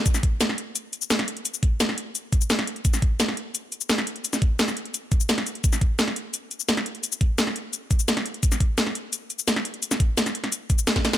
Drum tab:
HH |x-x-x-x-x-x-xxxx|x-x-x-x-x-x-xxxx|x-x-x-x-x-x-xxxx|x-x-x-xxx-x-xxxx|
SH |xx--x---x-xxx---|xx--x---x-xxx---|xx--x---x-xxx---|xx--xx--x-xxx-x-|
SD |-o--oo------oo--|----oo------oo--|-o--oo------oo--|-o--oo------oo--|
BD |o-o-------------|--o-------o-----|o-o-------------|--o-------o-----|

HH |x-x-x-x-x-x-xxxx|x-x-x-x-x-x-xxxx|x-x-x-x-x-x-xxxx|x-x-xxxxx-x-xxxx|
SH |xx--x---x-xxx---|xx--x---x-xxx---|xx--x---x-xxx---|xx--xx--x-xxx-xx|
SD |-o--oo------oo--|----oo------oo--|-o--oo------oo--|-o--oo-o----oooo|
BD |o-o-------------|--o-------o-----|o-o-------------|--o-------o--o--|